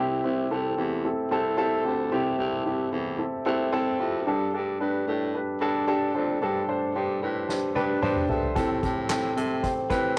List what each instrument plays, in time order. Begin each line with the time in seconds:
Already playing: baritone saxophone C2, upright piano C3 C4 E4 G4
0.23 baritone saxophone C2, upright piano C4 E4 G4
0.50 baritone saxophone C2, upright piano C4 E4 A4
0.77 baritone saxophone E2, upright piano C4 E4 G4
1.05 upright piano C4 E4 A4
1.31 baritone saxophone C2, upright piano C4 E4 A4
1.57 baritone saxophone C2, upright piano C4 E4 A4
1.84 baritone saxophone D2, upright piano C4 E4 G4
2.12 baritone saxophone C2, upright piano C3 C4 E4 G4
2.38 baritone saxophone C2, upright piano C4 E4 G4
2.65 baritone saxophone C2, upright piano C4 E4 G4
2.91 baritone saxophone E2, upright piano C4 E4 A4
3.18 upright piano C4 E4 A4
3.46 baritone saxophone C2, upright piano C4 E4 A4
3.73 baritone saxophone C2, upright piano C4 E4 A4
3.99 baritone saxophone F2, upright piano C4 E4 G4
4.26 baritone saxophone G2, upright piano G2 D4 G4 A4
4.54 baritone saxophone G2, upright piano D4 G4 A4
4.80 baritone saxophone G2, upright piano D4 G4 B4
5.07 baritone saxophone A2, upright piano D4 G4 A4
5.34 upright piano D4 G4 B4
5.61 baritone saxophone G2, upright piano D4 G4 A4
5.87 baritone saxophone G2, upright piano D4 G4 A4
6.14 baritone saxophone F2, upright piano D4 G4 C5
6.41 baritone saxophone G2, upright piano G2 D4 G4 A4
6.68 upright piano D4 G4 C5
6.95 baritone saxophone G2, upright piano D4 G4 C5
7.22 baritone saxophone A2, upright piano D4 G4 B4
7.49 upright piano D4 G4 C5, snare
7.75 baritone saxophone G2, upright piano D4 G4 B4 A5, high tom
8.02 baritone saxophone G2, upright piano D4 G4 C5 G5, mid tom
8.16 mid tom
8.28 baritone saxophone G2, upright piano D4 G4 A4 E5, floor tom
8.43 floor tom
8.55 upright piano A2 C4 G4 A4, baritone saxophone A2, kick, closed hi-hat
8.82 baritone saxophone A2, upright piano C4 G4 A4, kick, closed hi-hat
9.09 baritone saxophone A2, upright piano C4 G4 A4, snare, clap, closed hi-hat
9.36 baritone saxophone C3, upright piano C4 G4 A4, closed hi-hat
9.63 upright piano C4 G4 C5, kick, closed hi-hat
9.90 baritone saxophone A2, upright piano C4 G4 B4, kick, closed hi-hat